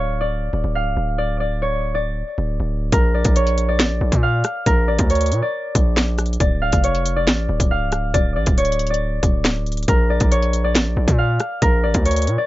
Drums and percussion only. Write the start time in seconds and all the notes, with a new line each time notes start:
2.92 kick, closed hi-hat
3.25 kick, closed hi-hat
3.36 closed hi-hat
3.47 closed hi-hat
3.58 closed hi-hat
3.79 snare, clap, closed hi-hat
4.12 kick, closed hi-hat
4.44 cross-stick, closed hi-hat
4.66 kick, closed hi-hat
4.99 kick, closed hi-hat
5.10 closed hi-hat
5.15 closed hi-hat
5.21 closed hi-hat
5.26 closed hi-hat
5.32 closed hi-hat
5.75 kick, closed hi-hat
5.97 snare, clap, closed hi-hat
6.18 cross-stick, closed hi-hat, open hi-hat
6.26 closed hi-hat
6.33 closed hi-hat
6.40 kick, closed hi-hat
6.72 kick, closed hi-hat
6.84 closed hi-hat
6.95 closed hi-hat
7.06 closed hi-hat
7.27 snare, clap, closed hi-hat
7.60 kick, closed hi-hat
7.92 cross-stick, closed hi-hat
8.14 kick, closed hi-hat
8.46 kick, closed hi-hat
8.58 closed hi-hat
8.65 closed hi-hat
8.72 closed hi-hat
8.79 closed hi-hat
8.87 closed hi-hat
8.94 closed hi-hat
9.23 kick, closed hi-hat
9.45 snare, clap, closed hi-hat
9.66 closed hi-hat
9.72 closed hi-hat
9.77 closed hi-hat
9.83 closed hi-hat
9.88 kick, closed hi-hat
10.20 kick, closed hi-hat
10.32 closed hi-hat
10.43 closed hi-hat
10.53 closed hi-hat
10.75 snare, clap, closed hi-hat
11.08 kick, closed hi-hat
11.40 cross-stick, closed hi-hat
11.62 kick, closed hi-hat
11.94 kick, closed hi-hat
12.06 closed hi-hat
12.11 closed hi-hat
12.16 closed hi-hat
12.22 closed hi-hat
12.27 closed hi-hat